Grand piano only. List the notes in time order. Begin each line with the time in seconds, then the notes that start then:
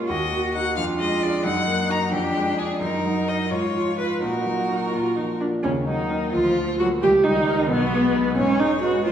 Already playing: A#2 G#3 A#3 C#4
0.10 D#2
0.32 A#3
0.55 D#4 F#4
0.78 F2
1.00 G#3
1.22 D4 G#4
1.45 F#2
1.67 A#3
1.89 D#4 F#4
2.12 F2
2.35 G#3
2.58 D4 G#4
2.81 F#2
3.04 F#3
3.28 D#4 A#4
3.51 G#2
3.75 F3
3.99 F4 B4
4.22 A#2
4.46 F#3
4.70 D#4 A#4
4.93 A#2
5.18 F3
5.41 D4 A#4
5.65 D#2
5.88 F#3
6.10 A#3 A#4
6.33 D2
6.57 F3
6.80 A#3 A#4
7.02 C#2
7.26 G3
7.49 D#4 A#4
7.70 B1
7.93 G#3
8.16 D#4 B4
8.39 G#2
8.61 G#3
8.83 D#4 B4
9.06 A2